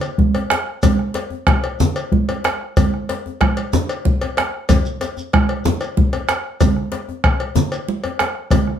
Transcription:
0.01 cowbell, shekere
0.18 bombo low, djembe slap, high conga
0.35 bombo rim, cowbell, djembe tone
0.50 bombo rim, cowbell, djembe slap, high conga
0.67 bombo rim
0.83 bombo rim, bombo low, cowbell, djembe tone, high conga, djembe bass, low conga, shekere
0.99 bombo rim, djembe slap
1.14 cowbell, djembe slap
1.30 djembe tone
1.47 bombo rim, bombo low, cowbell, high conga
1.64 cowbell, high conga
1.80 djembe slap, djembe tone, djembe bass, low conga, shekere
1.96 cowbell, shekere
2.12 bombo low, djembe slap, high conga
2.29 bombo rim, cowbell, djembe tone
2.44 bombo rim, cowbell, djembe slap, high conga
2.61 bombo rim
2.77 bombo rim, bombo low, cowbell, djembe tone, high conga, djembe bass, low conga, shekere
2.94 bombo rim, djembe slap
3.09 cowbell, djembe slap
3.26 djembe tone
3.41 bombo rim, bombo low, cowbell, high conga
3.57 cowbell, high conga
3.73 djembe slap, djembe tone, djembe bass, low conga, shekere
3.89 cowbell, shekere
4.05 bombo low, djembe slap, high conga
4.21 bombo rim, cowbell, djembe tone
4.37 bombo rim, cowbell, djembe slap, high conga
4.54 bombo rim
4.69 bombo rim, bombo low, cowbell, djembe tone, high conga, djembe bass, low conga, shekere
4.85 high conga, shekere
5.01 cowbell, djembe slap, shekere
5.17 djembe tone, shekere
5.33 bombo rim, bombo low, cowbell, djembe slap, high conga
5.49 cowbell
5.65 djembe slap, djembe tone, djembe bass, low conga, shekere
5.81 cowbell, djembe slap, shekere
5.97 bombo low, high conga
6.13 bombo rim, cowbell, djembe tone, high conga
6.29 bombo rim, cowbell, djembe slap, shekere
6.61 bombo rim, bombo low, cowbell, djembe tone, high conga, djembe bass, low conga, shekere
6.76 bombo rim, djembe slap
6.92 cowbell, djembe slap
7.08 djembe tone
7.24 bombo rim, bombo low, cowbell
7.40 cowbell, high conga
7.56 djembe slap, djembe tone, djembe bass, low conga, shekere
7.72 cowbell, shekere
7.88 djembe slap, high conga
8.04 bombo rim, cowbell, djembe tone
8.19 bombo rim, cowbell, djembe slap, high conga
8.35 bombo rim
8.51 bombo rim, bombo low, cowbell, djembe tone, high conga, djembe bass, low conga, shekere
8.67 bombo rim, djembe slap

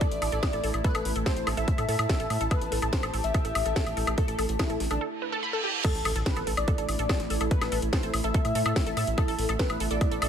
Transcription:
Already playing: A3 E4 A4 D5 E5
0.01 A4, kick, closed hi-hat
0.11 A1, closed hi-hat
0.21 A1 A4 A5, open hi-hat, high woodblock
0.32 A1 A4, closed hi-hat
0.43 kick, snare, closed hi-hat, high woodblock
0.53 A1 A4, closed hi-hat
0.64 A1 A4, open hi-hat
0.74 A1, closed hi-hat, high woodblock
0.84 A4 B4, kick, closed hi-hat
0.95 A1 A4, closed hi-hat, high woodblock
1.05 A1, open hi-hat
1.16 A1 A4, closed hi-hat
1.26 A4 C5, kick, snare, closed hi-hat, high woodblock
1.37 A1, closed hi-hat
1.47 A1 A4, snare, open hi-hat, high woodblock
1.57 A1 A4 E5, closed hi-hat
1.68 kick, closed hi-hat
1.78 A2 A4, closed hi-hat, high woodblock
1.89 A2 A4, open hi-hat
1.99 A2, closed hi-hat, high woodblock
2.09 A4, kick, snare, closed hi-hat
2.20 A1 A4, closed hi-hat
2.30 A2, open hi-hat, high woodblock
2.41 A1 A4, closed hi-hat
2.51 G4 A4 B4, kick, closed hi-hat, high woodblock
2.62 A1, closed hi-hat
2.72 A1 A4, open hi-hat
2.82 A1 A4, closed hi-hat, high woodblock
2.93 C5, kick, snare, closed hi-hat
3.03 A1 A4, closed hi-hat, high woodblock
3.14 A1 A4, open hi-hat
3.24 A1 E5, closed hi-hat
3.34 A4, kick, closed hi-hat, high woodblock
3.45 A1 A4, closed hi-hat
3.55 A1, open hi-hat, high woodblock
3.66 A1 A4, closed hi-hat
3.76 A4, kick, snare, closed hi-hat
3.86 A1, closed hi-hat, high woodblock
3.97 A1 A4, open hi-hat
4.07 A1 A4, closed hi-hat, high woodblock
4.18 A4, kick, closed hi-hat
4.28 A1 A4, closed hi-hat
4.39 A1 A4, open hi-hat, high woodblock
4.49 A1, closed hi-hat
4.59 E4 A4, kick, snare, closed hi-hat, high woodblock
4.70 A1 A4, closed hi-hat
4.80 A1, snare, open hi-hat
4.91 A1 D4 A4, closed hi-hat, high woodblock
5.01 A4, reverse cymbal
5.22 B4
5.32 A4
5.43 B5
5.53 A4
5.64 G4
5.84 A3 E4 A4, kick, closed hi-hat, crash, impact, high woodblock
5.95 A1, open hi-hat
6.05 A1 A4, open hi-hat, high woodblock
6.16 A1 A4, closed hi-hat
6.26 B4, kick, snare, closed hi-hat
6.34 A1 A4, closed hi-hat, high woodblock
6.47 A1 A4, open hi-hat
6.57 A1 D5, closed hi-hat, high woodblock
6.65 A4 E5, kick, closed hi-hat
6.78 A1 A4, closed hi-hat
6.89 A1, open hi-hat, high woodblock
6.99 A1 A4, closed hi-hat
7.09 A4, kick, snare, closed hi-hat, high woodblock
7.20 A1, snare, closed hi-hat
7.30 A1 A4, open hi-hat
7.41 A1 A4, closed hi-hat, high woodblock
7.51 B4, kick, closed hi-hat
7.61 A1 A4, snare, closed hi-hat, high woodblock
7.72 A1 A4, open hi-hat
7.82 A1, closed hi-hat
7.93 A4 C5, kick, snare, closed hi-hat, high woodblock
8.03 A1 A4, closed hi-hat
8.14 A1, open hi-hat, high woodblock
8.24 A1 A4 E5, closed hi-hat
8.34 A4, kick, closed hi-hat
8.45 A2, closed hi-hat, high woodblock
8.55 A2 A4, open hi-hat
8.66 A2 A4, closed hi-hat, high woodblock
8.76 kick, snare, open hi-hat
8.87 A1 A4, closed hi-hat
8.97 A2 A4, open hi-hat, high woodblock
9.07 A1, closed hi-hat
9.18 B3 A4, kick, closed hi-hat, high woodblock
9.28 A1 A4, open hi-hat
9.39 A1, open hi-hat
9.49 A1 A4, closed hi-hat, high woodblock
9.59 A4 B4, kick, snare, closed hi-hat
9.70 A1, closed hi-hat, high woodblock
9.80 A1 A4, open hi-hat
9.91 A1 A4 D5, closed hi-hat
10.01 kick, closed hi-hat, high woodblock
10.11 A1 A4, closed hi-hat
10.22 A1 A4, open hi-hat, high woodblock

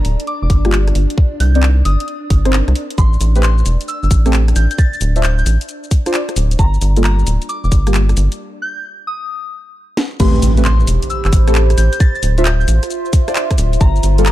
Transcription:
Already playing: D4
0.05 D1, open hi-hat
0.20 closed hi-hat
0.27 D6, closed hi-hat
0.42 F1 D6
0.50 G1, kick, open hi-hat
0.65 G3 A#3 F4 G4, cross-stick, closed hi-hat
0.72 clap
0.88 cross-stick, closed hi-hat
0.95 G1, open hi-hat
1.10 closed hi-hat
1.18 kick
1.40 C2 G6, open hi-hat
1.55 C4 D#4 A#4 D5, closed hi-hat
1.63 clap
1.85 G1 D#6, open hi-hat
2.00 closed hi-hat
2.08 closed hi-hat
2.30 G1, kick, open hi-hat
2.45 C4 D#4 A#4 C5, cross-stick, closed hi-hat
2.53 clap
2.68 C2, cross-stick, closed hi-hat
2.75 open hi-hat
2.90 closed hi-hat
2.98 A1 C6, kick, shaker
3.13 shaker
3.21 A1, open hi-hat, shaker
3.36 A3 C4 G4 B4, closed hi-hat, shaker
3.43 C6, clap, shaker
3.58 shaker
3.66 E1, open hi-hat, shaker
3.81 closed hi-hat, shaker
3.88 E6, closed hi-hat, shaker
4.03 G1 E6, shaker
4.11 A1, kick, open hi-hat, shaker
4.26 A3 C4 G4 A4, cross-stick, closed hi-hat, shaker
4.33 clap, shaker
4.48 cross-stick, closed hi-hat, shaker
4.56 A1 G6, open hi-hat, shaker
4.71 G6, closed hi-hat, shaker
4.78 A6, kick, shaker
4.93 A6, shaker
5.01 D1, open hi-hat, shaker
5.16 D4 F4 C5 E5, closed hi-hat, shaker
5.23 G6, clap, shaker
5.38 G6, shaker
5.46 A1, open hi-hat, shaker
5.61 closed hi-hat, shaker
5.69 closed hi-hat, shaker
5.84 shaker
5.91 kick, open hi-hat, shaker
6.06 D4 F4 C5 D5, cross-stick, closed hi-hat, shaker
6.14 clap, shaker
6.29 cross-stick, closed hi-hat, shaker
6.36 D1, open hi-hat, shaker
6.51 closed hi-hat, shaker
6.59 G1 A#5, kick, shaker
6.74 shaker
6.81 G1, open hi-hat, shaker
6.97 G3 A#3 F4 A4, closed hi-hat, shaker
7.04 A#5, clap, shaker
7.19 shaker
7.27 D1, open hi-hat, shaker
7.42 closed hi-hat, shaker
7.49 D6, closed hi-hat, shaker
7.64 F1 D6, shaker
7.72 G1, kick, open hi-hat, shaker
7.87 G3 A#3 F4 G4, cross-stick, closed hi-hat, shaker
7.94 clap, shaker
8.09 cross-stick, closed hi-hat, shaker
8.17 G1, open hi-hat, shaker
8.32 closed hi-hat, shaker
8.62 G6
9.07 D#6
9.97 snare
10.20 A1 A3 C4 G4 B4 C5 C6, kick, crash, impact, shaker
10.35 shaker
10.42 A1, open hi-hat, shaker
10.57 A3 C4 G4 B4, closed hi-hat, shaker
10.64 C5 B5 C6, clap, shaker
10.80 shaker
10.87 E1, open hi-hat, shaker
11.03 closed hi-hat, shaker
11.10 E6, closed hi-hat, shaker
11.25 G1 E6, clap, shaker
11.33 A1, kick, open hi-hat, shaker
11.48 A3 C4 G4 A4, cross-stick, closed hi-hat, shaker
11.55 clap, shaker
11.70 cross-stick, closed hi-hat, shaker
11.78 A1 G6, open hi-hat, shaker
11.93 G6, closed hi-hat, shaker
12.00 F4 A6, kick, shaker
12.15 A6, shaker
12.23 D1, open hi-hat, shaker
12.36 D4 F4 C5 E5 C6, closed hi-hat, shaker
12.45 G6, clap, shaker
12.60 G6, shaker
12.68 A1, open hi-hat, shaker
12.83 cross-stick, closed hi-hat, shaker
12.90 closed hi-hat, shaker
13.05 shaker
13.13 kick, open hi-hat, shaker
13.28 D4 F4 C5 D5, cross-stick, closed hi-hat, shaker
13.36 clap, shaker
13.51 kick, cross-stick, closed hi-hat, shaker
13.58 D1, open hi-hat, shaker
13.73 closed hi-hat, shaker
13.81 G1 A#5, kick, shaker
13.96 A#4, shaker
14.03 G1, open hi-hat, shaker
14.18 G3 A#3 F4 A4 A5, closed hi-hat, shaker
14.26 A#5, clap, shaker

